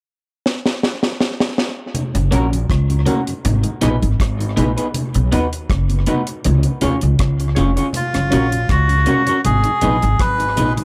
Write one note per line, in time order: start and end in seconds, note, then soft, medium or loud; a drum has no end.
0.46 snare medium
0.66 snare medium
0.83 snare medium
1.03 snare medium
1.21 snare medium
1.40 snare medium
1.58 snare medium
1.94 closed hi-hat medium
1.94 low conga medium
2.14 2.31 F#1 medium
2.14 2.21 F#2 medium
2.14 2.21 C#3 medium
2.14 closed hi-hat medium
2.31 2.66 A#1 medium
2.31 2.39 F#3 medium
2.31 2.45 A#3 medium
2.31 2.39 A#3 medium
2.31 2.39 C#4 medium
2.31 2.45 C#4 medium
2.31 2.45 F#4 medium
2.31 2.46 A#4 medium
2.31 closed hi-hat medium
2.51 2.58 F#2 medium
2.51 2.58 C#3 medium
2.51 closed hi-hat medium
2.70 3.04 C#2 medium
2.70 kick loud
2.70 cross-stick loud
2.70 closed hi-hat medium
2.89 2.96 F#2 medium
2.89 2.96 C#3 medium
2.89 closed hi-hat medium
3.06 3.14 F#3 medium
3.06 3.20 A#3 medium
3.06 3.14 A#3 medium
3.06 3.20 C#4 medium
3.06 3.15 C#4 medium
3.06 3.20 F#4 medium
3.06 3.20 A#4 medium
3.06 closed hi-hat medium
3.06 low conga medium
3.27 3.34 F#2 medium
3.27 3.34 C#3 medium
3.27 closed hi-hat medium
3.45 3.63 G#1 loud
3.45 closed hi-hat medium
3.45 low conga medium
3.64 3.71 G#2 medium
3.64 3.71 D#3 medium
3.64 closed hi-hat medium
3.81 4.00 A#1 medium
3.81 3.89 G#3 medium
3.81 3.95 B3 medium
3.81 3.90 B3 medium
3.81 3.95 D#4 medium
3.81 3.90 D#4 medium
3.81 3.95 G#4 medium
3.81 3.96 B4 medium
3.81 cross-stick medium
3.81 closed hi-hat medium
3.81 low conga medium
4.02 4.18 G#1 medium
4.02 4.09 G#2 medium
4.02 4.09 D#3 medium
4.02 closed hi-hat soft
4.20 4.54 G#1 medium
4.20 kick loud
4.20 cross-stick loud
4.20 closed hi-hat medium
4.39 4.46 G#2 medium
4.39 4.46 D#3 medium
4.39 closed hi-hat soft
4.56 4.75 A#1 medium
4.56 4.64 G#3 medium
4.56 4.70 B3 medium
4.56 4.65 B3 medium
4.56 4.65 D#4 medium
4.56 4.70 D#4 medium
4.56 4.71 G#4 medium
4.56 4.71 B4 medium
4.56 closed hi-hat medium
4.56 low conga medium
4.77 4.87 B3 medium
4.77 4.87 D#4 medium
4.77 4.87 G#4 medium
4.77 4.86 B4 medium
4.77 closed hi-hat medium
4.94 closed hi-hat medium
4.94 low conga medium
5.14 5.31 B1 medium
5.14 5.21 B2 medium
5.14 closed hi-hat soft
5.32 5.66 D#2 medium
5.32 5.40 F#3 medium
5.32 5.45 B3 medium
5.32 5.40 B3 medium
5.32 5.40 D#4 medium
5.32 5.46 D#4 medium
5.32 5.46 F#4 medium
5.32 5.46 B4 loud
5.32 closed hi-hat medium
5.53 closed hi-hat medium
5.70 6.04 F#1 medium
5.70 kick loud
5.70 cross-stick loud
5.70 closed hi-hat medium
5.90 5.96 B2 medium
5.90 closed hi-hat soft
6.06 6.15 F#3 medium
6.06 6.20 B3 medium
6.06 6.15 B3 medium
6.06 6.21 D#4 medium
6.06 6.15 D#4 medium
6.06 6.21 F#4 medium
6.06 6.21 B4 medium
6.06 closed hi-hat medium
6.06 low conga medium
6.27 closed hi-hat medium
6.44 6.63 C#2 loud
6.44 closed hi-hat medium
6.44 low conga medium
6.63 6.72 C#3 medium
6.63 closed hi-hat medium
6.81 7.00 D#2 medium
6.81 6.89 G#3 medium
6.81 6.89 C#4 medium
6.81 6.95 C#4 medium
6.81 6.90 F4 medium
6.81 6.95 F4 medium
6.81 6.96 G#4 medium
6.81 6.96 C#5 medium
6.81 closed hi-hat medium
6.81 low conga medium
7.01 7.18 C#2 medium
7.01 7.09 C#3 medium
7.01 closed hi-hat soft
7.19 7.53 C#2 medium
7.19 kick loud
7.19 cross-stick loud
7.19 closed hi-hat medium
7.39 7.46 C#3 medium
7.39 closed hi-hat soft
7.55 7.76 F1 medium
7.55 7.64 G#3 medium
7.55 7.64 C#4 medium
7.55 7.70 C#4 medium
7.55 7.64 F4 medium
7.55 7.70 F4 medium
7.55 7.71 G#4 medium
7.55 7.71 C#5 medium
7.55 closed hi-hat medium
7.55 low conga medium
7.75 7.83 C#3 medium
7.75 7.87 C#4 soft
7.75 7.87 F4 medium
7.75 7.86 G#4 medium
7.75 7.86 C#5 medium
7.75 closed hi-hat soft
7.93 8.73 F4 loud
7.93 closed hi-hat medium
7.93 low conga medium
8.13 8.31 F#1 medium
8.13 8.21 F#2 medium
8.13 8.21 C#3 medium
8.13 cross-stick medium
8.13 closed hi-hat medium
8.30 8.66 A#1 medium
8.30 8.39 F#3 medium
8.30 8.39 A#3 medium
8.30 8.39 C#4 medium
8.30 8.45 C#4 medium
8.30 8.45 F#4 medium
8.30 8.46 A#4 medium
8.30 8.46 C#5 medium
8.30 closed hi-hat medium
8.51 8.58 F#2 medium
8.51 8.58 C#3 medium
8.51 closed hi-hat medium
8.69 9.03 C#2 medium
8.69 9.41 F#4 medium
8.69 kick loud
8.69 cross-stick loud
8.69 closed hi-hat medium
8.88 8.96 F#2 medium
8.88 8.95 C#3 medium
8.88 closed hi-hat soft
9.06 9.14 F#3 medium
9.06 9.14 A#3 medium
9.06 9.14 C#4 medium
9.06 9.20 C#4 medium
9.06 9.21 F#4 medium
9.06 9.21 A#4 medium
9.06 9.21 C#5 medium
9.06 closed hi-hat medium
9.06 low conga medium
9.26 9.33 F#2 medium
9.26 9.33 C#3 medium
9.26 9.37 C#4 medium
9.26 9.37 F#4 medium
9.26 9.37 A#4 medium
9.26 9.36 C#5 medium
9.26 closed hi-hat medium
9.45 9.63 G#1 medium
9.45 10.22 G#4 loud
9.45 closed hi-hat medium
9.45 low conga medium
9.64 9.71 G#2 medium
9.64 9.71 D#3 medium
9.64 closed hi-hat soft
9.81 10.00 A#1 medium
9.81 9.89 G#3 medium
9.81 9.90 B3 medium
9.81 9.95 B3 medium
9.81 9.90 D#4 medium
9.81 9.96 D#4 medium
9.81 9.96 G#4 medium
9.81 9.96 B4 medium
9.81 closed hi-hat medium
9.81 high conga medium
9.81 low conga medium
10.02 10.18 G#1 medium
10.02 10.09 G#2 medium
10.02 10.09 D#3 soft
10.02 closed hi-hat soft
10.19 10.53 G#1 medium
10.19 10.73 B4 loud
10.19 kick loud
10.19 cross-stick loud
10.19 closed hi-hat medium
10.19 high conga soft
10.38 10.46 G#2 medium
10.38 10.46 D#3 medium
10.38 closed hi-hat soft
10.56 10.75 A#1 medium
10.56 10.64 G#3 medium
10.56 10.65 B3 medium
10.56 10.70 B3 medium
10.56 10.64 D#4 medium
10.56 10.71 D#4 medium
10.56 10.71 G#4 medium
10.56 10.71 B4 medium
10.56 closed hi-hat medium
10.56 low conga medium
10.76 10.83 G#2 medium
10.76 10.83 D#3 medium
10.76 closed hi-hat soft